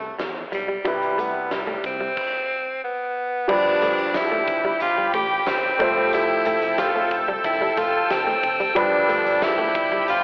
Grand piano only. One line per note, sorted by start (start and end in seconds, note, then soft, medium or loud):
0.00 0.86 C3 medium
0.00 0.81 G3 medium
0.00 0.82 E4 medium
0.00 0.82 B4 medium
0.84 1.80 C3 medium
0.84 2.14 G3 medium
0.84 2.15 E4 medium
0.84 2.15 B4 medium
3.48 4.44 G2 medium
3.48 5.76 F3 medium
3.48 5.75 G3 medium
3.48 5.76 D4 medium
3.48 5.76 B4 medium
5.79 8.40 F3 medium
5.79 8.39 A3 medium
5.79 8.40 C5 medium
5.79 8.40 E5 medium
8.75 9.71 G2 medium
8.75 10.24 F3 medium
8.75 10.24 G3 medium
8.75 10.24 D4 medium
8.75 10.24 B4 medium